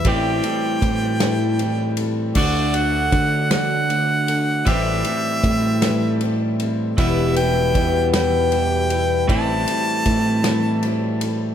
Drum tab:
CC |------|x-----|------|------|
RD |xxxxxx|-xxxxx|xxxxxx|xxxxxx|
SD |---o--|---o--|---o--|---o--|
BD |o-o---|o-o---|o-o---|o-o---|

CC |------|
RD |xxxxxx|
SD |---o--|
BD |o-o---|